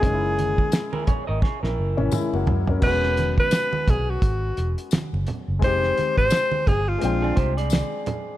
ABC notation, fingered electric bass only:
X:1
M:4/4
L:1/16
Q:"Swing 16ths" 1/4=86
K:Elyd
V:1 name="Fingered electric bass" clef=bass
F,,,4 z3 G,,, z A,,, F,,, G,,, z F,,, F,,2 | E,,,4 z2 B,,,2 G,,,2 E,,, z2 F,,, z F,,, | =F,,,2 z _A,,, z2 =G,,,2 ^A,,,2 ^B,,,3 z3 |]